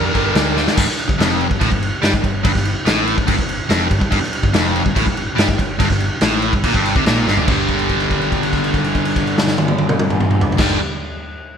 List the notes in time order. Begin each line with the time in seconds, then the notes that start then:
Already playing: G2 D3 G3 A#4
0.13 G1 G2 D3 G3, kick, crash
0.34 D2 G2 D3 G3, snare, crash
0.56 G2 D3 G3, snare
0.68 snare
0.76 G1 G2, kick, crash
0.88 muted picked electric bass stroke, muted overdriven electric guitar stroke, snare
0.99 crash
1.08 G1 G2, kick
1.18 F1 F2, snare, crash
1.41 crash
1.49 G1 G2, kick
1.60 A1 A2, kick, crash
1.71 G1 G2, kick
1.82 crash
2.02 G2 G3, snare, crash
2.12 G1 G2, kick
2.23 G1 G2, kick, crash
2.44 G1 G2, kick, crash
2.54 G1 G2, kick, snare
2.65 crash
2.85 A1 A2, snare, crash
3.07 crash
3.17 G1 G2, kick
3.27 G1 G2, kick, crash
3.37 G1 G2, kick
3.49 crash
3.69 F1 F2, snare, crash
3.90 G1 G2, kick, crash
4.00 G1 G2, kick
4.11 G1 G2, kick, crash
4.21 muted overdriven electric guitar stroke, muted picked electric bass stroke, snare
4.33 crash
4.43 G1 G2, kick
4.53 F1 F2, snare, crash
4.76 crash
4.85 G1 G2, kick
4.95 A1 A2, kick, crash
5.05 G1 G2, kick
5.17 crash
5.36 G2 G3, snare, crash
5.48 G1 G2, kick
5.58 G1 G2, kick, crash
5.79 G1 G2, kick, crash
5.90 G1 G2, kick, snare
6.00 crash
6.21 A1 A2, snare, crash
6.42 crash
6.53 G1 G2, kick
6.64 A#1 A#2, kick, crash
6.74 G1 G2, kick
6.86 crash
6.96 C2 C3, kick
7.06 A#1 A#2, snare, crash
7.27 G1 G2, snare
7.37 D2 D3, floor tom
7.46 G1 G2 D3, kick, crash
7.50 G3
7.68 kick, crash
7.79 crash
7.89 kick, crash
8.00 crash
8.11 kick, crash
8.22 crash
8.32 kick, crash
8.43 crash
8.53 kick, crash
8.64 crash
8.74 kick, crash
8.84 crash
8.95 kick, crash
9.05 crash
9.16 kick, crash
9.27 crash
9.38 snare
9.48 snare
9.58 high tom
9.68 high tom
9.78 high tom
9.89 mid tom
9.99 mid tom
10.10 mid tom
10.20 mid tom
10.31 mid tom
10.41 floor tom
10.52 floor tom
10.57 G1 G2 D3 G3, kick, snare, crash